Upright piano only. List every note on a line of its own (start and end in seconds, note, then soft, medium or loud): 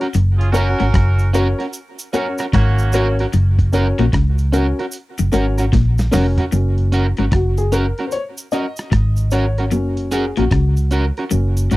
0.53 0.80 C#4 medium
0.53 0.80 F#4 medium
0.53 0.80 A#4 medium
0.53 0.80 C#5 loud
1.33 1.60 C#4 medium
1.33 1.60 F#4 medium
1.33 1.61 A#4 medium
1.33 1.61 C#5 loud
2.13 2.40 C#4 medium
2.13 2.40 F#4 medium
2.13 2.40 A#4 medium
2.13 2.41 C#5 loud
2.93 3.20 C#4 loud
2.93 3.20 F#4 medium
2.93 3.20 A#4 medium
2.93 3.21 C#5 loud
3.73 3.99 C#4 medium
3.73 4.00 F#4 medium
3.73 4.00 A#4 medium
3.73 4.00 C#5 loud
4.53 4.79 C#4 medium
4.53 4.79 F#4 medium
4.53 4.80 A#4 medium
4.53 4.80 C#5 medium
5.32 5.59 C#4 medium
5.32 5.59 F#4 medium
5.32 5.59 A#4 medium
5.32 5.60 C#5 loud
6.11 6.38 C#4 loud
6.11 6.39 F#4 medium
6.11 6.39 A#4 medium
6.11 6.39 C#5 medium
6.52 7.68 F#3 soft
6.52 7.68 A#3 soft
6.52 7.69 C#4 medium
7.34 7.60 F#4 medium
7.58 7.73 G#4 medium
7.72 8.08 A#4 medium
8.07 8.12 C5 medium
8.12 8.21 C#5 loud
8.52 9.34 D#5 loud
9.32 10.14 C#5 loud
9.71 10.29 F#3 medium
9.71 10.30 A#3 medium
9.71 10.30 C#4 medium
10.12 10.38 G#4 medium
10.37 11.53 F#4 medium
11.30 11.67 F#3 soft
11.30 11.67 A#3 soft
11.30 11.67 C#4 medium